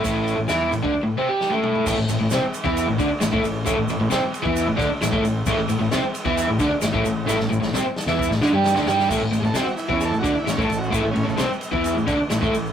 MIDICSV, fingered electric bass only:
0, 0, Header, 1, 3, 480
1, 0, Start_track
1, 0, Tempo, 452489
1, 45, Time_signature, 4, 2, 24, 8
1, 8205, Tempo, 458365
1, 13432, End_track
2, 0, Start_track
2, 0, Title_t, "Fingered electric bass"
2, 0, Program_c, 0, 33
2, 56, Note_on_c, 0, 33, 94
2, 387, Note_off_c, 0, 33, 0
2, 400, Note_on_c, 0, 33, 78
2, 505, Note_off_c, 0, 33, 0
2, 512, Note_on_c, 0, 40, 93
2, 743, Note_off_c, 0, 40, 0
2, 760, Note_on_c, 0, 33, 78
2, 876, Note_off_c, 0, 33, 0
2, 895, Note_on_c, 0, 38, 87
2, 1004, Note_off_c, 0, 38, 0
2, 1976, Note_on_c, 0, 33, 98
2, 2079, Note_off_c, 0, 33, 0
2, 2086, Note_on_c, 0, 33, 80
2, 2199, Note_off_c, 0, 33, 0
2, 2213, Note_on_c, 0, 33, 82
2, 2323, Note_off_c, 0, 33, 0
2, 2334, Note_on_c, 0, 33, 80
2, 2438, Note_off_c, 0, 33, 0
2, 2444, Note_on_c, 0, 36, 92
2, 2558, Note_off_c, 0, 36, 0
2, 2816, Note_on_c, 0, 40, 101
2, 3036, Note_off_c, 0, 40, 0
2, 3056, Note_on_c, 0, 33, 84
2, 3164, Note_off_c, 0, 33, 0
2, 3175, Note_on_c, 0, 38, 95
2, 3283, Note_off_c, 0, 38, 0
2, 3409, Note_on_c, 0, 33, 78
2, 3520, Note_off_c, 0, 33, 0
2, 3537, Note_on_c, 0, 33, 99
2, 3637, Note_off_c, 0, 33, 0
2, 3643, Note_on_c, 0, 33, 80
2, 3868, Note_off_c, 0, 33, 0
2, 3892, Note_on_c, 0, 33, 98
2, 3994, Note_off_c, 0, 33, 0
2, 4000, Note_on_c, 0, 33, 82
2, 4115, Note_off_c, 0, 33, 0
2, 4120, Note_on_c, 0, 33, 82
2, 4227, Note_off_c, 0, 33, 0
2, 4233, Note_on_c, 0, 33, 83
2, 4350, Note_off_c, 0, 33, 0
2, 4366, Note_on_c, 0, 36, 102
2, 4477, Note_off_c, 0, 36, 0
2, 4730, Note_on_c, 0, 40, 103
2, 4950, Note_off_c, 0, 40, 0
2, 4955, Note_on_c, 0, 33, 84
2, 5070, Note_off_c, 0, 33, 0
2, 5082, Note_on_c, 0, 38, 99
2, 5180, Note_off_c, 0, 38, 0
2, 5321, Note_on_c, 0, 33, 81
2, 5430, Note_off_c, 0, 33, 0
2, 5437, Note_on_c, 0, 33, 104
2, 5529, Note_off_c, 0, 33, 0
2, 5536, Note_on_c, 0, 33, 79
2, 5771, Note_off_c, 0, 33, 0
2, 5796, Note_on_c, 0, 33, 99
2, 5903, Note_off_c, 0, 33, 0
2, 5909, Note_on_c, 0, 33, 84
2, 6027, Note_off_c, 0, 33, 0
2, 6038, Note_on_c, 0, 33, 86
2, 6142, Note_off_c, 0, 33, 0
2, 6148, Note_on_c, 0, 33, 85
2, 6266, Note_off_c, 0, 33, 0
2, 6283, Note_on_c, 0, 36, 95
2, 6394, Note_off_c, 0, 36, 0
2, 6636, Note_on_c, 0, 40, 106
2, 6862, Note_off_c, 0, 40, 0
2, 6886, Note_on_c, 0, 33, 83
2, 6991, Note_off_c, 0, 33, 0
2, 6997, Note_on_c, 0, 38, 92
2, 7111, Note_off_c, 0, 38, 0
2, 7242, Note_on_c, 0, 33, 84
2, 7354, Note_off_c, 0, 33, 0
2, 7362, Note_on_c, 0, 33, 101
2, 7474, Note_off_c, 0, 33, 0
2, 7489, Note_on_c, 0, 33, 80
2, 7710, Note_off_c, 0, 33, 0
2, 7734, Note_on_c, 0, 33, 102
2, 7841, Note_off_c, 0, 33, 0
2, 7855, Note_on_c, 0, 33, 82
2, 7962, Note_off_c, 0, 33, 0
2, 7971, Note_on_c, 0, 33, 81
2, 8080, Note_off_c, 0, 33, 0
2, 8089, Note_on_c, 0, 33, 82
2, 8199, Note_off_c, 0, 33, 0
2, 8209, Note_on_c, 0, 36, 99
2, 8318, Note_off_c, 0, 36, 0
2, 8546, Note_on_c, 0, 40, 100
2, 8776, Note_off_c, 0, 40, 0
2, 8787, Note_on_c, 0, 33, 85
2, 8901, Note_off_c, 0, 33, 0
2, 8907, Note_on_c, 0, 38, 94
2, 9025, Note_off_c, 0, 38, 0
2, 9029, Note_on_c, 0, 43, 100
2, 9257, Note_off_c, 0, 43, 0
2, 9268, Note_on_c, 0, 38, 96
2, 9384, Note_off_c, 0, 38, 0
2, 9396, Note_on_c, 0, 43, 88
2, 9620, Note_off_c, 0, 43, 0
2, 9636, Note_on_c, 0, 33, 94
2, 9739, Note_off_c, 0, 33, 0
2, 9745, Note_on_c, 0, 33, 74
2, 9846, Note_off_c, 0, 33, 0
2, 9852, Note_on_c, 0, 33, 80
2, 9962, Note_off_c, 0, 33, 0
2, 9968, Note_on_c, 0, 33, 81
2, 10085, Note_off_c, 0, 33, 0
2, 10092, Note_on_c, 0, 36, 94
2, 10211, Note_off_c, 0, 36, 0
2, 10473, Note_on_c, 0, 40, 100
2, 10683, Note_off_c, 0, 40, 0
2, 10690, Note_on_c, 0, 33, 83
2, 10814, Note_off_c, 0, 33, 0
2, 10823, Note_on_c, 0, 38, 87
2, 10941, Note_off_c, 0, 38, 0
2, 11061, Note_on_c, 0, 33, 81
2, 11180, Note_off_c, 0, 33, 0
2, 11186, Note_on_c, 0, 33, 94
2, 11293, Note_off_c, 0, 33, 0
2, 11300, Note_on_c, 0, 33, 79
2, 11532, Note_off_c, 0, 33, 0
2, 11547, Note_on_c, 0, 33, 99
2, 11664, Note_off_c, 0, 33, 0
2, 11676, Note_on_c, 0, 33, 78
2, 11789, Note_off_c, 0, 33, 0
2, 11798, Note_on_c, 0, 33, 78
2, 11910, Note_off_c, 0, 33, 0
2, 11916, Note_on_c, 0, 33, 82
2, 12023, Note_off_c, 0, 33, 0
2, 12029, Note_on_c, 0, 36, 96
2, 12146, Note_off_c, 0, 36, 0
2, 12390, Note_on_c, 0, 40, 98
2, 12619, Note_off_c, 0, 40, 0
2, 12637, Note_on_c, 0, 33, 87
2, 12747, Note_off_c, 0, 33, 0
2, 12754, Note_on_c, 0, 38, 95
2, 12870, Note_off_c, 0, 38, 0
2, 12993, Note_on_c, 0, 33, 79
2, 13105, Note_off_c, 0, 33, 0
2, 13112, Note_on_c, 0, 33, 103
2, 13225, Note_off_c, 0, 33, 0
2, 13231, Note_on_c, 0, 33, 75
2, 13432, Note_off_c, 0, 33, 0
2, 13432, End_track
3, 0, Start_track
3, 0, Title_t, "Muted fingered electric bass strokes"
3, 2573, Note_on_c, 9, 29, 40
3, 2679, Note_off_c, 9, 29, 0
3, 3292, Note_on_c, 9, 29, 43
3, 3398, Note_off_c, 9, 29, 0
3, 4495, Note_on_c, 9, 29, 41
3, 4601, Note_off_c, 9, 29, 0
3, 5186, Note_on_c, 9, 29, 45
3, 5293, Note_off_c, 9, 29, 0
3, 6402, Note_on_c, 9, 29, 42
3, 6508, Note_off_c, 9, 29, 0
3, 7124, Note_on_c, 9, 29, 45
3, 7230, Note_off_c, 9, 29, 0
3, 8328, Note_on_c, 9, 29, 41
3, 8433, Note_off_c, 9, 29, 0
3, 10217, Note_on_c, 9, 29, 39
3, 10322, Note_off_c, 9, 29, 0
3, 10946, Note_on_c, 9, 29, 45
3, 11051, Note_off_c, 9, 29, 0
3, 12159, Note_on_c, 9, 29, 39
3, 12263, Note_off_c, 9, 29, 0
3, 12883, Note_on_c, 9, 29, 41
3, 12988, Note_off_c, 9, 29, 0
3, 13432, End_track
0, 0, End_of_file